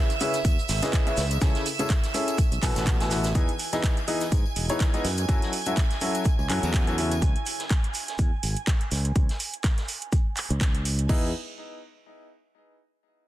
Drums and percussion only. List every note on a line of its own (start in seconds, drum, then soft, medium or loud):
0.10 closed hi-hat soft
0.10 tambourine soft
0.10 shaker soft
0.20 open hi-hat medium
0.20 shaker medium
0.21 shaker medium
0.34 snare soft
0.34 closed hi-hat medium
0.34 tambourine medium
0.34 shaker soft
0.45 kick loud
0.45 closed hi-hat medium
0.45 tambourine medium
0.45 shaker medium
0.45 shaker soft
0.59 tambourine soft
0.59 shaker soft
0.68 snare loud
0.68 open hi-hat loud
0.68 shaker medium
0.82 snare loud
0.82 closed hi-hat medium
0.82 tambourine medium
0.82 shaker medium
0.82 shaker soft
0.93 kick loud
0.93 snare loud
0.93 clap loud
0.93 closed hi-hat medium
0.93 tambourine medium
0.93 shaker medium
0.93 shaker soft
1.07 closed hi-hat soft
1.07 tambourine soft
1.16 snare loud
1.16 open hi-hat medium
1.16 shaker medium
1.18 shaker medium
1.31 closed hi-hat medium
1.31 tambourine medium
1.31 shaker soft
1.41 kick loud
1.41 snare loud
1.41 closed hi-hat medium
1.41 tambourine medium
1.41 shaker medium
1.41 shaker soft
1.55 snare medium
1.55 closed hi-hat soft
1.55 tambourine soft
1.55 shaker soft
1.66 open hi-hat loud
1.66 shaker medium
1.79 closed hi-hat medium
1.79 tambourine medium
1.79 shaker soft
1.90 kick loud
1.90 snare loud
1.90 clap loud
1.90 closed hi-hat medium
1.90 shaker medium
1.90 shaker soft
2.03 snare medium
2.03 closed hi-hat soft
2.03 tambourine soft
2.03 shaker soft
2.14 open hi-hat medium
2.14 shaker medium
2.28 closed hi-hat medium
2.28 tambourine medium
2.28 shaker soft
2.38 kick loud
2.38 closed hi-hat medium
2.38 tambourine medium
2.38 shaker medium
2.38 shaker soft
2.52 closed hi-hat soft
2.52 tambourine soft
2.52 shaker soft
2.62 kick medium
2.62 snare loud
2.62 clap medium
2.62 open hi-hat loud
2.62 shaker medium
2.76 snare loud
2.76 closed hi-hat medium
2.76 tambourine medium
2.76 shaker medium
2.76 shaker soft
2.86 kick loud
2.86 snare loud
2.86 clap loud
2.86 closed hi-hat medium
2.86 tambourine medium
2.86 shaker medium
2.86 shaker soft
3.00 snare loud
3.00 closed hi-hat soft
3.00 tambourine soft
3.00 shaker medium
3.00 shaker soft
3.10 snare loud
3.10 open hi-hat medium
3.10 shaker medium
3.24 snare loud
3.24 closed hi-hat medium
3.24 tambourine medium
3.24 shaker medium
3.24 shaker soft
3.35 kick loud
3.35 closed hi-hat medium
3.35 tambourine medium
3.35 shaker medium
3.48 closed hi-hat soft
3.48 tambourine soft
3.59 open hi-hat loud
3.59 shaker medium
3.73 snare medium
3.73 closed hi-hat medium
3.73 tambourine medium
3.83 kick loud
3.83 snare loud
3.83 clap loud
3.83 closed hi-hat medium
3.83 tambourine medium
3.83 shaker medium
3.97 closed hi-hat soft
3.97 tambourine soft
4.08 open hi-hat medium
4.08 shaker medium
4.20 snare soft
4.20 closed hi-hat medium
4.20 tambourine medium
4.32 kick loud
4.32 closed hi-hat medium
4.32 tambourine medium
4.32 shaker loud
4.46 tambourine soft
4.56 open hi-hat loud
4.56 shaker medium
4.69 closed hi-hat medium
4.69 tambourine medium
4.80 kick loud
4.80 snare loud
4.80 clap loud
4.80 closed hi-hat medium
4.80 tambourine medium
4.80 shaker medium
4.94 closed hi-hat soft
4.94 tambourine soft
5.04 snare medium
5.04 open hi-hat medium
5.04 shaker medium
5.18 closed hi-hat medium
5.18 tambourine medium
5.29 kick loud
5.29 closed hi-hat medium
5.29 tambourine medium
5.29 shaker medium
5.42 snare medium
5.42 closed hi-hat soft
5.42 tambourine soft
5.53 open hi-hat loud
5.53 shaker medium
5.66 closed hi-hat medium
5.66 tambourine medium
5.77 kick loud
5.77 snare loud
5.77 clap loud
5.77 closed hi-hat medium
5.77 tambourine medium
5.77 shaker medium
5.90 snare medium
5.90 closed hi-hat soft
5.90 tambourine soft
6.01 open hi-hat medium
6.01 shaker medium
6.15 closed hi-hat medium
6.15 tambourine medium
6.25 kick loud
6.25 closed hi-hat medium
6.25 tambourine medium
6.25 shaker medium
6.39 tambourine soft
6.50 clap medium
6.50 open hi-hat loud
6.50 shaker medium
6.63 closed hi-hat soft
6.63 tambourine medium
6.73 kick loud
6.73 snare loud
6.73 clap loud
6.73 closed hi-hat medium
6.73 tambourine medium
6.73 shaker medium
6.87 closed hi-hat soft
6.87 tambourine soft
6.98 open hi-hat medium
6.98 shaker medium
7.11 closed hi-hat medium
7.11 tambourine medium
7.22 kick loud
7.22 closed hi-hat medium
7.22 shaker medium
7.36 closed hi-hat soft
7.46 open hi-hat loud
7.46 shaker medium
7.59 snare medium
7.59 closed hi-hat medium
7.70 kick loud
7.70 snare loud
7.70 clap loud
7.70 closed hi-hat medium
7.70 shaker medium
7.84 closed hi-hat soft
7.94 open hi-hat loud
7.94 shaker medium
8.08 snare soft
8.08 closed hi-hat soft
8.19 kick loud
8.19 closed hi-hat medium
8.19 shaker medium
8.43 open hi-hat loud
8.43 shaker medium
8.57 closed hi-hat soft
8.67 kick loud
8.67 snare loud
8.67 clap loud
8.67 closed hi-hat medium
8.67 shaker loud
8.81 closed hi-hat soft
8.91 snare medium
8.91 open hi-hat loud
8.91 shaker medium
9.05 closed hi-hat medium
9.16 kick loud
9.16 closed hi-hat medium
9.16 shaker medium
9.29 snare medium
9.29 closed hi-hat soft
9.40 open hi-hat loud
9.40 shaker medium
9.54 closed hi-hat soft
9.64 kick loud
9.64 snare loud
9.64 clap loud
9.64 closed hi-hat medium
9.64 shaker medium
9.78 snare medium
9.78 closed hi-hat soft
9.88 open hi-hat medium
9.88 shaker medium
10.02 closed hi-hat soft
10.12 kick loud
10.12 closed hi-hat medium
10.12 shaker medium
10.36 clap medium
10.36 open hi-hat loud
10.36 shaker medium
10.50 closed hi-hat soft
10.61 kick loud
10.61 snare loud
10.61 clap loud
10.61 closed hi-hat medium
10.61 shaker loud
10.75 closed hi-hat soft
10.85 open hi-hat medium
10.85 shaker medium
10.99 closed hi-hat medium
11.09 kick loud
11.09 crash medium